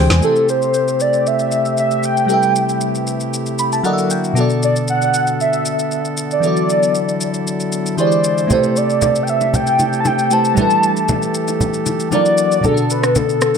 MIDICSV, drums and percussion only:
0, 0, Header, 1, 2, 480
1, 0, Start_track
1, 0, Tempo, 517241
1, 209, Time_signature, 4, 2, 24, 8
1, 12600, End_track
2, 0, Start_track
2, 0, Title_t, "Drums"
2, 94, Note_on_c, 9, 38, 94
2, 95, Note_on_c, 9, 82, 54
2, 187, Note_off_c, 9, 38, 0
2, 188, Note_off_c, 9, 82, 0
2, 208, Note_on_c, 9, 82, 65
2, 301, Note_off_c, 9, 82, 0
2, 333, Note_on_c, 9, 82, 43
2, 425, Note_off_c, 9, 82, 0
2, 452, Note_on_c, 9, 82, 83
2, 545, Note_off_c, 9, 82, 0
2, 576, Note_on_c, 9, 82, 53
2, 669, Note_off_c, 9, 82, 0
2, 686, Note_on_c, 9, 82, 80
2, 778, Note_off_c, 9, 82, 0
2, 816, Note_on_c, 9, 82, 53
2, 909, Note_off_c, 9, 82, 0
2, 927, Note_on_c, 9, 82, 83
2, 1020, Note_off_c, 9, 82, 0
2, 1051, Note_on_c, 9, 82, 53
2, 1144, Note_off_c, 9, 82, 0
2, 1174, Note_on_c, 9, 82, 68
2, 1267, Note_off_c, 9, 82, 0
2, 1291, Note_on_c, 9, 82, 48
2, 1384, Note_off_c, 9, 82, 0
2, 1406, Note_on_c, 9, 82, 80
2, 1499, Note_off_c, 9, 82, 0
2, 1534, Note_on_c, 9, 82, 56
2, 1627, Note_off_c, 9, 82, 0
2, 1646, Note_on_c, 9, 82, 64
2, 1739, Note_off_c, 9, 82, 0
2, 1773, Note_on_c, 9, 82, 47
2, 1866, Note_off_c, 9, 82, 0
2, 1885, Note_on_c, 9, 82, 87
2, 1978, Note_off_c, 9, 82, 0
2, 2014, Note_on_c, 9, 82, 50
2, 2107, Note_off_c, 9, 82, 0
2, 2128, Note_on_c, 9, 82, 65
2, 2221, Note_off_c, 9, 82, 0
2, 2252, Note_on_c, 9, 82, 47
2, 2345, Note_off_c, 9, 82, 0
2, 2373, Note_on_c, 9, 82, 84
2, 2466, Note_off_c, 9, 82, 0
2, 2497, Note_on_c, 9, 82, 52
2, 2590, Note_off_c, 9, 82, 0
2, 2606, Note_on_c, 9, 82, 81
2, 2699, Note_off_c, 9, 82, 0
2, 2736, Note_on_c, 9, 82, 51
2, 2829, Note_off_c, 9, 82, 0
2, 2848, Note_on_c, 9, 82, 82
2, 2941, Note_off_c, 9, 82, 0
2, 2972, Note_on_c, 9, 82, 53
2, 3065, Note_off_c, 9, 82, 0
2, 3095, Note_on_c, 9, 82, 72
2, 3188, Note_off_c, 9, 82, 0
2, 3213, Note_on_c, 9, 82, 47
2, 3305, Note_off_c, 9, 82, 0
2, 3328, Note_on_c, 9, 82, 81
2, 3420, Note_off_c, 9, 82, 0
2, 3456, Note_on_c, 9, 82, 57
2, 3548, Note_off_c, 9, 82, 0
2, 3568, Note_on_c, 9, 82, 62
2, 3661, Note_off_c, 9, 82, 0
2, 3695, Note_on_c, 9, 82, 51
2, 3787, Note_off_c, 9, 82, 0
2, 3807, Note_on_c, 9, 82, 86
2, 3900, Note_off_c, 9, 82, 0
2, 3936, Note_on_c, 9, 82, 49
2, 4029, Note_off_c, 9, 82, 0
2, 4050, Note_on_c, 9, 82, 61
2, 4142, Note_off_c, 9, 82, 0
2, 4173, Note_on_c, 9, 82, 47
2, 4266, Note_off_c, 9, 82, 0
2, 4293, Note_on_c, 9, 82, 82
2, 4386, Note_off_c, 9, 82, 0
2, 4417, Note_on_c, 9, 82, 54
2, 4510, Note_off_c, 9, 82, 0
2, 4526, Note_on_c, 9, 82, 82
2, 4619, Note_off_c, 9, 82, 0
2, 4657, Note_on_c, 9, 82, 53
2, 4750, Note_off_c, 9, 82, 0
2, 4768, Note_on_c, 9, 82, 81
2, 4861, Note_off_c, 9, 82, 0
2, 4891, Note_on_c, 9, 82, 55
2, 4984, Note_off_c, 9, 82, 0
2, 5015, Note_on_c, 9, 82, 68
2, 5108, Note_off_c, 9, 82, 0
2, 5132, Note_on_c, 9, 82, 51
2, 5225, Note_off_c, 9, 82, 0
2, 5247, Note_on_c, 9, 82, 82
2, 5339, Note_off_c, 9, 82, 0
2, 5375, Note_on_c, 9, 82, 55
2, 5467, Note_off_c, 9, 82, 0
2, 5488, Note_on_c, 9, 82, 66
2, 5580, Note_off_c, 9, 82, 0
2, 5613, Note_on_c, 9, 82, 49
2, 5706, Note_off_c, 9, 82, 0
2, 5726, Note_on_c, 9, 82, 88
2, 5819, Note_off_c, 9, 82, 0
2, 5855, Note_on_c, 9, 82, 49
2, 5948, Note_off_c, 9, 82, 0
2, 5969, Note_on_c, 9, 82, 61
2, 6062, Note_off_c, 9, 82, 0
2, 6093, Note_on_c, 9, 82, 47
2, 6186, Note_off_c, 9, 82, 0
2, 6213, Note_on_c, 9, 82, 82
2, 6306, Note_off_c, 9, 82, 0
2, 6337, Note_on_c, 9, 82, 54
2, 6430, Note_off_c, 9, 82, 0
2, 6446, Note_on_c, 9, 82, 81
2, 6539, Note_off_c, 9, 82, 0
2, 6576, Note_on_c, 9, 82, 54
2, 6669, Note_off_c, 9, 82, 0
2, 6687, Note_on_c, 9, 82, 80
2, 6780, Note_off_c, 9, 82, 0
2, 6811, Note_on_c, 9, 82, 55
2, 6904, Note_off_c, 9, 82, 0
2, 6934, Note_on_c, 9, 82, 70
2, 7027, Note_off_c, 9, 82, 0
2, 7052, Note_on_c, 9, 82, 47
2, 7145, Note_off_c, 9, 82, 0
2, 7166, Note_on_c, 9, 82, 84
2, 7259, Note_off_c, 9, 82, 0
2, 7295, Note_on_c, 9, 82, 57
2, 7388, Note_off_c, 9, 82, 0
2, 7407, Note_on_c, 9, 82, 62
2, 7500, Note_off_c, 9, 82, 0
2, 7533, Note_on_c, 9, 82, 49
2, 7626, Note_off_c, 9, 82, 0
2, 7646, Note_on_c, 9, 82, 90
2, 7739, Note_off_c, 9, 82, 0
2, 7775, Note_on_c, 9, 82, 49
2, 7868, Note_off_c, 9, 82, 0
2, 7889, Note_on_c, 9, 82, 62
2, 7892, Note_on_c, 9, 64, 80
2, 7981, Note_off_c, 9, 82, 0
2, 7985, Note_off_c, 9, 64, 0
2, 8012, Note_on_c, 9, 82, 45
2, 8105, Note_off_c, 9, 82, 0
2, 8132, Note_on_c, 9, 82, 79
2, 8225, Note_off_c, 9, 82, 0
2, 8257, Note_on_c, 9, 82, 54
2, 8350, Note_off_c, 9, 82, 0
2, 8366, Note_on_c, 9, 82, 82
2, 8372, Note_on_c, 9, 60, 66
2, 8372, Note_on_c, 9, 64, 66
2, 8458, Note_off_c, 9, 82, 0
2, 8464, Note_off_c, 9, 60, 0
2, 8464, Note_off_c, 9, 64, 0
2, 8496, Note_on_c, 9, 82, 56
2, 8588, Note_off_c, 9, 82, 0
2, 8607, Note_on_c, 9, 82, 81
2, 8699, Note_off_c, 9, 82, 0
2, 8731, Note_on_c, 9, 82, 54
2, 8735, Note_on_c, 9, 60, 48
2, 8824, Note_off_c, 9, 82, 0
2, 8828, Note_off_c, 9, 60, 0
2, 8850, Note_on_c, 9, 64, 70
2, 8854, Note_on_c, 9, 82, 72
2, 8943, Note_off_c, 9, 64, 0
2, 8947, Note_off_c, 9, 82, 0
2, 8971, Note_on_c, 9, 82, 48
2, 9064, Note_off_c, 9, 82, 0
2, 9086, Note_on_c, 9, 82, 78
2, 9089, Note_on_c, 9, 61, 67
2, 9179, Note_off_c, 9, 82, 0
2, 9182, Note_off_c, 9, 61, 0
2, 9214, Note_on_c, 9, 82, 53
2, 9307, Note_off_c, 9, 82, 0
2, 9326, Note_on_c, 9, 82, 64
2, 9329, Note_on_c, 9, 60, 60
2, 9329, Note_on_c, 9, 61, 61
2, 9419, Note_off_c, 9, 82, 0
2, 9422, Note_off_c, 9, 60, 0
2, 9422, Note_off_c, 9, 61, 0
2, 9453, Note_on_c, 9, 82, 47
2, 9546, Note_off_c, 9, 82, 0
2, 9565, Note_on_c, 9, 82, 88
2, 9658, Note_off_c, 9, 82, 0
2, 9695, Note_on_c, 9, 82, 49
2, 9787, Note_off_c, 9, 82, 0
2, 9808, Note_on_c, 9, 82, 61
2, 9813, Note_on_c, 9, 64, 76
2, 9901, Note_off_c, 9, 82, 0
2, 9906, Note_off_c, 9, 64, 0
2, 9932, Note_on_c, 9, 82, 45
2, 10025, Note_off_c, 9, 82, 0
2, 10052, Note_on_c, 9, 82, 85
2, 10145, Note_off_c, 9, 82, 0
2, 10177, Note_on_c, 9, 82, 53
2, 10269, Note_off_c, 9, 82, 0
2, 10285, Note_on_c, 9, 82, 81
2, 10292, Note_on_c, 9, 60, 67
2, 10292, Note_on_c, 9, 64, 69
2, 10378, Note_off_c, 9, 82, 0
2, 10384, Note_off_c, 9, 60, 0
2, 10384, Note_off_c, 9, 64, 0
2, 10416, Note_on_c, 9, 82, 53
2, 10508, Note_off_c, 9, 82, 0
2, 10527, Note_on_c, 9, 82, 84
2, 10620, Note_off_c, 9, 82, 0
2, 10651, Note_on_c, 9, 82, 56
2, 10655, Note_on_c, 9, 60, 48
2, 10743, Note_off_c, 9, 82, 0
2, 10748, Note_off_c, 9, 60, 0
2, 10770, Note_on_c, 9, 64, 69
2, 10774, Note_on_c, 9, 82, 71
2, 10862, Note_off_c, 9, 64, 0
2, 10867, Note_off_c, 9, 82, 0
2, 10891, Note_on_c, 9, 82, 51
2, 10984, Note_off_c, 9, 82, 0
2, 11006, Note_on_c, 9, 82, 78
2, 11009, Note_on_c, 9, 61, 65
2, 11098, Note_off_c, 9, 82, 0
2, 11102, Note_off_c, 9, 61, 0
2, 11134, Note_on_c, 9, 82, 56
2, 11226, Note_off_c, 9, 82, 0
2, 11246, Note_on_c, 9, 82, 65
2, 11249, Note_on_c, 9, 60, 61
2, 11249, Note_on_c, 9, 61, 61
2, 11339, Note_off_c, 9, 82, 0
2, 11342, Note_off_c, 9, 60, 0
2, 11342, Note_off_c, 9, 61, 0
2, 11373, Note_on_c, 9, 82, 47
2, 11466, Note_off_c, 9, 82, 0
2, 11485, Note_on_c, 9, 82, 89
2, 11578, Note_off_c, 9, 82, 0
2, 11615, Note_on_c, 9, 82, 50
2, 11708, Note_off_c, 9, 82, 0
2, 11728, Note_on_c, 9, 82, 64
2, 11733, Note_on_c, 9, 64, 77
2, 11821, Note_off_c, 9, 82, 0
2, 11826, Note_off_c, 9, 64, 0
2, 11852, Note_on_c, 9, 82, 45
2, 11945, Note_off_c, 9, 82, 0
2, 11972, Note_on_c, 9, 82, 80
2, 12065, Note_off_c, 9, 82, 0
2, 12097, Note_on_c, 9, 37, 87
2, 12097, Note_on_c, 9, 82, 54
2, 12189, Note_off_c, 9, 37, 0
2, 12190, Note_off_c, 9, 82, 0
2, 12206, Note_on_c, 9, 82, 82
2, 12211, Note_on_c, 9, 60, 69
2, 12211, Note_on_c, 9, 64, 67
2, 12298, Note_off_c, 9, 82, 0
2, 12304, Note_off_c, 9, 60, 0
2, 12304, Note_off_c, 9, 64, 0
2, 12336, Note_on_c, 9, 82, 55
2, 12429, Note_off_c, 9, 82, 0
2, 12446, Note_on_c, 9, 82, 83
2, 12452, Note_on_c, 9, 37, 87
2, 12539, Note_off_c, 9, 82, 0
2, 12545, Note_off_c, 9, 37, 0
2, 12571, Note_on_c, 9, 82, 54
2, 12600, Note_off_c, 9, 82, 0
2, 12600, End_track
0, 0, End_of_file